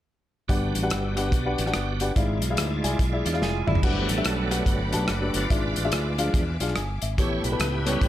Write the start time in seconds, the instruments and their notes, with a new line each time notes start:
0.48 fingered electric bass G1, grand piano G2 D4 G4 B4 F#5, tonewheel organ B3 F#4 G4 D5, kick, closed hi-hat
0.75 fingered electric bass A1, closed hi-hat
0.82 grand piano D4 G4 B4 F#5
0.90 fingered electric bass G1, cross-stick, closed hi-hat
1.17 grand piano D4 G4 B4 F#5, cross-stick, closed hi-hat
1.32 fingered electric bass B1, kick, closed hi-hat
1.46 grand piano D4 G4 B4 F#5
1.58 fingered electric bass A1, closed hi-hat
1.66 grand piano D4 G4 B4 F#5, cross-stick
1.74 fingered electric bass G1, cross-stick, closed hi-hat
2.00 grand piano D4 G4 B4 F#5, closed hi-hat
2.15 fingered electric bass G#1, grand piano G#2 E4 G#4 D5 F5, tonewheel organ G3 E4 F4 D5, kick, closed hi-hat
2.21 tonewheel organ G#3
2.42 fingered electric bass B1, closed hi-hat
2.50 grand piano E4 G#4 D5 F5
2.57 fingered electric bass D2, cross-stick, closed hi-hat
2.84 fingered electric bass C2, grand piano E4 G#4 D5 G#5, closed hi-hat
2.99 fingered electric bass B1, kick, closed hi-hat
3.12 grand piano E4 G#4 D5 E5
3.26 fingered electric bass E2, clean electric guitar D4 F4, closed hi-hat
3.33 grand piano E4 G#4 D5 F5, cross-stick
3.41 fingered electric bass F1, clean electric guitar F4 G#4, snare
3.67 fingered electric bass F#1, grand piano E4 G#4 D5 E5, clean electric guitar E4, mid tom
3.75 floor tom
3.82 fingered electric bass G1, grand piano G2 D4 G4 B4 F#5, tonewheel organ F#3 A3 B3 D4 G4, string section F#5 G5 B5 D6, kick, crash
4.09 fingered electric bass A1, tonewheel organ D4 A4, closed hi-hat
4.17 grand piano D4 G4 B4 E5
4.25 fingered electric bass B1, cross-stick, closed hi-hat
4.50 grand piano D4 G4 B4 F#5, tonewheel organ B4, cross-stick, closed hi-hat
4.66 fingered electric bass G1, tonewheel organ D4 B4, kick, closed hi-hat
4.92 fingered electric bass B1, grand piano D4 G4 B4 A5, closed hi-hat
5.08 fingered electric bass F#1, cross-stick, closed hi-hat
5.21 grand piano D4 G4 B4 D5
5.34 fingered electric bass G1, tonewheel organ F4 B4 D5, closed hi-hat
5.50 fingered electric bass G#1, grand piano G#2 D4 F4 G#4 E5, string section E5 F5 G#5, kick, closed hi-hat
5.76 fingered electric bass A1, closed hi-hat
5.84 grand piano D4 F4 G#4 E5
5.92 fingered electric bass D2, cross-stick, closed hi-hat
6.18 tonewheel organ F3 G#3 D4, grand piano D4 F4 G#4 F5, closed hi-hat
6.34 fingered electric bass E2, kick, closed hi-hat
6.60 fingered electric bass B1, grand piano D4 F4 G#4 F5, closed hi-hat
6.68 cross-stick
6.76 fingered electric bass G1, grand piano G#5, cross-stick, closed hi-hat
7.02 fingered electric bass G#1, grand piano E5, closed hi-hat
7.18 fingered electric bass A1, grand piano A2 B3 G4 A4 C#5, tonewheel organ E4 G4 C#5, string section C#5 G5 A5 B5, kick, closed hi-hat
7.44 fingered electric bass B1, tonewheel organ E4 G4 B4, closed hi-hat
7.52 grand piano B3 G4 A4 B4
7.59 fingered electric bass C#2, cross-stick, closed hi-hat
7.85 tonewheel organ G3 B3 C#4 E4 G4 B4, grand piano B3 G4 A4 C#5, cross-stick, closed hi-hat
8.01 fingered electric bass A1, kick, closed hi-hat